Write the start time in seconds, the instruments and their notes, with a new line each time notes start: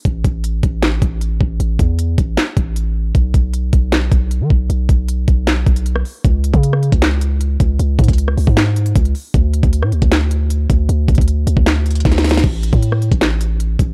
0.05 808-style bass A1, kick, closed hi-hat
0.24 808-style bass A1, kick, closed hi-hat
0.44 closed hi-hat
0.63 808-style bass A1, kick, closed hi-hat
0.82 snare, clap, closed hi-hat
1.02 808-style bass A1, kick, closed hi-hat
1.21 closed hi-hat
1.41 808-style bass A1, kick
1.60 808-style bass A1, closed hi-hat
1.79 808-style bass E2, kick, closed hi-hat
1.99 closed hi-hat
2.18 808-style bass A1, kick, closed hi-hat
2.37 snare, clap, closed hi-hat
2.57 808-style bass A1, kick, closed hi-hat
2.76 closed hi-hat
3.15 808-style bass B1, kick, closed hi-hat
3.34 808-style bass B1, kick, closed hi-hat
3.54 closed hi-hat
3.73 808-style bass B1, kick, closed hi-hat
3.92 snare, clap, closed hi-hat
4.12 808-style bass B1, kick, closed hi-hat
4.31 closed hi-hat
4.41 808-style bass D#3
4.50 808-style bass B1, kick
4.70 808-style bass B1, closed hi-hat
4.89 808-style bass B1, kick, closed hi-hat
5.08 closed hi-hat
5.28 808-style bass B1, kick, closed hi-hat
5.47 snare, clap, closed hi-hat
5.67 808-style bass B1, kick, closed hi-hat
5.76 closed hi-hat
5.86 closed hi-hat
5.96 cross-stick
6.05 open hi-hat
6.25 808-style bass C#2, kick, closed hi-hat
6.44 closed hi-hat
6.54 808-style bass C#3, kick, closed hi-hat
6.63 closed hi-hat
6.73 cross-stick
6.83 closed hi-hat
6.92 808-style bass C#2, kick, closed hi-hat
7.02 snare, clap, closed hi-hat
7.21 closed hi-hat
7.41 closed hi-hat
7.60 808-style bass C#2, kick, closed hi-hat
7.79 808-style bass C#2, closed hi-hat
7.99 808-style bass G#2, kick, closed hi-hat
8.04 closed hi-hat
8.08 808-style bass C#2, kick, closed hi-hat
8.13 closed hi-hat
8.18 closed hi-hat
8.28 cross-stick
8.37 808-style bass C#2, open hi-hat
8.47 808-style bass G#2, kick
8.57 snare, clap, closed hi-hat
8.76 closed hi-hat
8.86 closed hi-hat
8.95 808-style bass C#2, kick, closed hi-hat
9.05 closed hi-hat
9.15 open hi-hat
9.34 808-style bass D2, kick, closed hi-hat
9.54 closed hi-hat
9.63 808-style bass D2, kick, closed hi-hat
9.73 closed hi-hat
9.83 808-style bass A2, cross-stick
9.92 808-style bass D2, closed hi-hat
10.02 808-style bass D2, kick, closed hi-hat
10.12 snare, clap, closed hi-hat
10.31 closed hi-hat
10.50 closed hi-hat
10.70 808-style bass D2, kick, closed hi-hat
10.89 808-style bass D2, closed hi-hat
11.08 808-style bass D2, kick, closed hi-hat
11.15 808-style bass D2, kick, closed hi-hat
11.21 closed hi-hat
11.28 closed hi-hat
11.47 808-style bass D2, closed hi-hat
11.57 808-style bass D2, kick
11.66 snare, clap, closed hi-hat
11.86 closed hi-hat
11.91 closed hi-hat
11.95 closed hi-hat
12.00 closed hi-hat
12.05 808-style bass D2, kick, snare, closed hi-hat
12.12 snare, closed hi-hat
12.18 snare, closed hi-hat
12.24 snare, closed hi-hat, open hi-hat
12.29 snare, closed hi-hat
12.31 closed hi-hat
12.34 snare, closed hi-hat
12.37 closed hi-hat
12.39 closed hi-hat
12.44 808-style bass A1, kick, crash
12.63 closed hi-hat
12.73 808-style bass A2, kick, closed hi-hat
12.82 closed hi-hat
12.92 cross-stick
13.02 closed hi-hat
13.12 808-style bass A1, kick, closed hi-hat
13.21 snare, clap, closed hi-hat
13.41 closed hi-hat
13.60 closed hi-hat
13.79 808-style bass A1, kick, closed hi-hat